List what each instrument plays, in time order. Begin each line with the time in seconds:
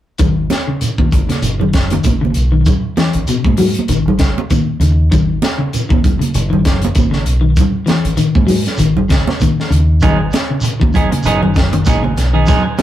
0.18 fingered electric bass G#1, clean electric guitar D#3, kick, closed hi-hat, high conga, low conga, shekere
0.50 snare, closed hi-hat, high conga, shekere
0.68 clean electric guitar C#3
0.81 closed hi-hat, high conga, shekere
0.98 fingered electric bass G#1, clean electric guitar D#3, kick, high conga
1.11 fingered electric bass G#1, kick, closed hi-hat, shekere
1.29 clean electric guitar C#3, snare, closed hi-hat, high conga
1.42 fingered electric bass F#1, closed hi-hat, high conga, shekere
1.60 clean electric guitar D#3, low conga
1.73 kick, snare, closed hi-hat, shekere
1.90 clean electric guitar D#3, closed hi-hat, high conga
2.03 fingered electric bass G#1, kick, closed hi-hat, high conga, shekere
2.21 clean electric guitar C#3, high conga
2.34 fingered electric bass B1, closed hi-hat, shekere
2.52 clean electric guitar D#3
2.66 kick, closed hi-hat, high conga, low conga, shekere
2.97 clean electric guitar E3, snare, closed hi-hat, high conga, shekere
3.13 fingered electric bass G#1, closed hi-hat
3.27 clean electric guitar B2, muted fingered electric bass stroke, closed hi-hat, high conga, shekere
3.45 fingered electric bass G#2, kick, high conga
3.57 clean electric guitar F#3, open hi-hat, low conga, shekere
3.74 closed hi-hat
3.79 high conga
3.88 fingered electric bass G#1, clean electric guitar D#3, closed hi-hat, high conga, shekere
4.05 fingered electric bass G#1, low conga
4.19 clean electric guitar C#3, kick, snare, closed hi-hat, shekere
4.38 high conga
4.50 clean electric guitar D#3, kick, closed hi-hat, high conga, shekere
4.80 fingered electric bass D#2, clean electric guitar C#3, closed hi-hat, shekere
5.11 fingered electric bass G#1, clean electric guitar D#3, kick, closed hi-hat, high conga, low conga, shekere
5.42 snare, closed hi-hat, high conga, shekere
5.58 clean electric guitar C#3
5.73 closed hi-hat, high conga, shekere
5.89 fingered electric bass G#1, clean electric guitar D#3, kick, high conga
6.04 fingered electric bass G#1, kick, closed hi-hat, low conga, shekere
6.19 clean electric guitar C#3, closed hi-hat, high conga
6.34 fingered electric bass F#1, closed hi-hat, high conga, shekere
6.50 clean electric guitar D#3, low conga
6.65 kick, snare, closed hi-hat, shekere
6.79 muted clean electric guitar stroke, closed hi-hat
6.85 high conga
6.95 fingered electric bass G#1, kick, closed hi-hat, high conga, shekere
7.11 clean electric guitar C#3, snare
7.26 fingered electric bass B1, closed hi-hat, shekere
7.41 clean electric guitar D#3
7.56 kick, closed hi-hat, shekere
7.60 high conga, low conga
7.86 clean electric guitar E3, snare, closed hi-hat, high conga, shekere
8.05 fingered electric bass G#1, closed hi-hat
8.17 clean electric guitar D#3, muted fingered electric bass stroke, closed hi-hat, high conga, shekere
8.35 fingered electric bass G#2, kick, high conga
8.47 clean electric guitar F#3, open hi-hat, low conga, shekere
8.66 snare, closed hi-hat
8.78 fingered electric bass G#1, clean electric guitar D#3, closed hi-hat, high conga, shekere
8.97 fingered electric bass G#1, low conga
9.09 clean electric guitar C#3, kick, snare, closed hi-hat, shekere
9.27 snare, high conga
9.40 clean electric guitar D#3, kick, closed hi-hat, high conga, shekere
9.60 snare
9.70 fingered electric bass D#2, clean electric guitar C#3, closed hi-hat, shekere
10.01 fingered electric bass G#1, clean electric guitar D#3 F#3 B3 D#4 G#4, kick, closed hi-hat, high conga, low conga, shekere
10.19 muted clean electric guitar stroke
10.31 muted clean electric guitar stroke, snare, closed hi-hat, high conga, shekere
10.50 clean electric guitar C#3
10.61 muted clean electric guitar stroke, closed hi-hat, shekere
10.66 high conga
10.80 fingered electric bass G#1, clean electric guitar D#3, kick, high conga
10.93 fingered electric bass G#1, clean electric guitar F#3 B3 D#4 G#4, kick, closed hi-hat, low conga, shekere
11.11 clean electric guitar C#3, muted clean electric guitar stroke, closed hi-hat, high conga
11.23 fingered electric bass F#1, clean electric guitar F#3 B3 D#4 G#4, closed hi-hat, shekere
11.43 clean electric guitar D#3, muted clean electric guitar stroke, low conga
11.55 muted clean electric guitar stroke, kick, snare, closed hi-hat, shekere
11.73 clean electric guitar D#3, closed hi-hat, high conga
11.86 fingered electric bass G#1, clean electric guitar F#3 B3 D#4 G#4, kick, snare, closed hi-hat, high conga, shekere
12.02 clean electric guitar C#3, muted clean electric guitar stroke, high conga
12.17 fingered electric bass B1, muted clean electric guitar stroke, snare, closed hi-hat, shekere
12.33 clean electric guitar D#3 B3 D#4 G#4
12.46 clean electric guitar F#3 B3 D#4 G#4, kick, snare, closed hi-hat, high conga, low conga, shekere
12.64 muted clean electric guitar stroke
12.78 muted clean electric guitar stroke, closed hi-hat, high conga, shekere